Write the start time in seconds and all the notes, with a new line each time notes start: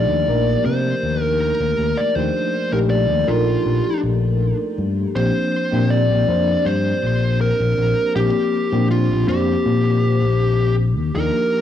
Already playing: F3 A3 A#3 D4 D#4 G4 D5
0.10 D#2
0.26 A#1 F3 A#3 D4 D#4 A#4
0.65 C3 C5
1.03 D#2
1.22 A#4
1.40 A#4
1.60 D#2
1.78 D#2
1.97 D5
2.15 D#2 F3 A3 D4 D#4 G4 C5
2.72 A#1 F3 A3 D4 D#4 G4 A#4
2.90 D5
3.10 D#2
3.27 A#1 F3 D4 D#4 F4 A4 A#4
3.66 A#1
4.03 A#1
4.78 G2
5.15 A#1 F3 A#3 C4 D4 G4 C5
5.72 A#2 F3 A#3 C4 D4 G4
5.90 D5
6.10 A#1
6.26 F2 F3 A#3 C4 D4 C5
6.65 G2 C5
7.03 A#1
7.41 A#4
7.60 A#1
7.78 A#1
8.15 A#1 F3 A#3 C4 D4 G4
8.72 A#2 F3 A#3 C4 D4 G4
8.91 F4
9.10 A#1
9.26 F2 F3 A#3 C4 D4 G4 C5
9.66 A#2
10.22 A#1
10.98 D#2
11.15 D#2 F3 A#3 D4 D#4 G4 A#4